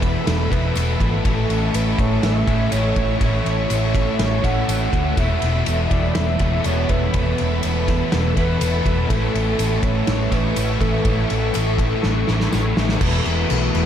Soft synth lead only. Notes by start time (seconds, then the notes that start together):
Already playing: B4
0.27 A4
0.51 B4
1.26 A4
1.75 B4
2.00 C#5
2.24 E5
2.72 C#5
3.20 C#5
4.19 C#5
4.44 F#5
5.19 E5
5.91 D5
6.15 E5
6.66 C#5
6.90 B4
8.38 B4
9.09 A4
9.84 C#5
10.33 B4
10.81 A4
13.01 B4